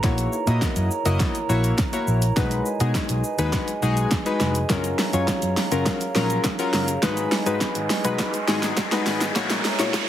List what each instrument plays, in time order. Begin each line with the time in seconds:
Already playing: glass harmonica A#5
0.03 fingered electric bass A#1, synth keys A#3 E4 F#4 C#5, glass harmonica E4 A#4 C#5, kick, snare, closed hi-hat, shaker
0.18 closed hi-hat, shaker
0.33 shaker
0.47 fingered electric bass A#2, synth keys A#3 E4 F#4 D#5, closed hi-hat, shaker
0.62 kick, snare, closed hi-hat, shaker
0.76 fingered electric bass F#2, closed hi-hat, shaker
0.91 shaker
1.05 fingered electric bass F#1, synth keys A#3 E4 F#4 D#5, closed hi-hat, shaker
1.20 kick, snare, closed hi-hat, shaker
1.35 closed hi-hat, shaker
1.49 fingered electric bass A#1, synth keys A#3 E4 F#4 C#5, shaker
1.64 closed hi-hat, shaker
1.78 kick, snare, closed hi-hat, shaker
1.93 synth keys A#3 E4 F#4 C#5, closed hi-hat, shaker
2.07 fingered electric bass A#1, shaker
2.22 closed hi-hat, shaker
2.37 fingered electric bass B1, synth keys G#3 D#4 F#4 B4, glass harmonica G#4 B4 D#5 G#5, kick, snare, closed hi-hat, shaker
2.51 closed hi-hat, shaker
2.66 shaker
2.80 fingered electric bass B2, synth keys G#3 D#4 F#4 G#4, closed hi-hat, shaker
2.95 kick, snare, closed hi-hat, shaker
3.09 fingered electric bass B1, closed hi-hat, shaker
3.24 shaker
3.38 fingered electric bass D#2, synth keys G#3 D#4 F#4 B4, closed hi-hat, shaker
3.53 kick, snare, closed hi-hat, shaker
3.68 closed hi-hat, shaker
3.82 fingered electric bass B1, synth keys G#3 D#4 F#4 G#4, shaker
3.97 closed hi-hat, shaker
4.11 kick, snare, closed hi-hat, shaker
4.26 synth keys G#3 D#4 F#4 B4, closed hi-hat, shaker
4.40 fingered electric bass F1, snare, shaker
4.55 closed hi-hat, shaker
4.69 fingered electric bass F#1, synth keys F#3 C#4 F4 A#4, glass harmonica C#5 F5 A#5, kick, snare, closed hi-hat, riser, shaker
4.84 closed hi-hat, shaker
4.99 snare, open hi-hat, shaker
5.13 fingered electric bass F#2, synth keys F#3 C#4 F4 C#5, closed hi-hat, shaker
5.28 kick, snare, closed hi-hat, shaker
5.42 fingered electric bass F#2, closed hi-hat, shaker
5.57 snare, open hi-hat, shaker
5.71 fingered electric bass F#1, synth keys F#3 C#4 F4 A#4, closed hi-hat, shaker
5.86 kick, snare, closed hi-hat, shaker
6.01 closed hi-hat, shaker
6.15 fingered electric bass A#1, synth keys F#3 C#4 F4 A#4, snare, open hi-hat, shaker
6.30 closed hi-hat, shaker
6.44 kick, snare, closed hi-hat, shaker
6.59 synth keys F#3 C#4 F4 A#4, closed hi-hat, shaker
6.73 fingered electric bass F#1, snare, open hi-hat, shaker
6.88 closed hi-hat, shaker
7.02 fingered electric bass G#1, synth keys G#3 D#4 F#4 B4, glass harmonica B4 D#5 G#5, kick, snare, closed hi-hat, shaker
7.17 closed hi-hat, shaker
7.32 snare, open hi-hat, shaker
7.46 fingered electric bass G#2, synth keys G#3 D#4 F#4 B4, closed hi-hat, shaker
7.61 kick, snare, closed hi-hat, shaker
7.75 fingered electric bass G#1, closed hi-hat, shaker
7.90 snare, open hi-hat, shaker
8.04 fingered electric bass B1, synth keys G#3 D#4 F#4 B4, closed hi-hat, shaker
8.19 kick, snare, closed hi-hat, shaker
8.34 closed hi-hat, shaker
8.48 fingered electric bass G#1, synth keys G#3 D#4 F#4 G#4, snare, open hi-hat, shaker
8.63 snare, closed hi-hat, shaker
8.77 kick, snare, closed hi-hat, shaker
8.92 synth keys G#3 D#4 F#4 B4, snare, closed hi-hat, shaker
9.06 fingered electric bass G#1, snare, open hi-hat, shaker
9.21 snare, closed hi-hat, shaker
9.35 fingered electric bass A#1, synth keys A#3 E4 F#4 C#5, glass harmonica C#5 E5 A#5, kick, snare, closed hi-hat, shaker
9.50 snare, closed hi-hat, shaker
9.65 snare, open hi-hat, shaker
9.79 fingered electric bass A#2, synth keys A#3 E4 F#4 C#5, snare, closed hi-hat, shaker
9.94 kick, snare, closed hi-hat, shaker